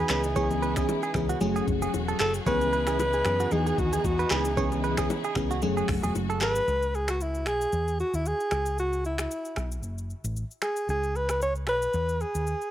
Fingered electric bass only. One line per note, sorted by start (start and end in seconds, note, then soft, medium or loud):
0.10 0.84 C#2 loud
1.15 1.34 C#2 loud
1.41 1.60 F#1 loud
1.68 1.86 F#1 medium
1.94 2.12 E1 medium
2.20 2.39 F#1 loud
2.46 3.22 C#2 loud
3.26 3.44 F#2 loud
3.52 3.70 E2 loud
3.78 3.97 D#2 medium
4.05 4.23 E2 medium
4.31 5.05 C#2 loud
5.36 5.64 C#2 loud
5.62 5.81 F#1 loud
5.89 5.99 F#1 loud
6.03 6.12 E1 medium
6.15 6.42 F#1 medium
6.42 6.60 G#1 medium
6.68 7.47 C#2 loud
7.47 7.65 B1 medium
7.73 8.02 E2 loud
8.14 8.32 D#2 medium
8.52 9.26 C#2 medium
9.57 9.84 B1 loud
9.84 10.12 F#1 loud
10.24 10.43 A1 medium
10.89 11.68 C#2 loud
11.68 11.86 B1 loud
11.94 12.23 E2 loud
12.35 12.53 D#2 medium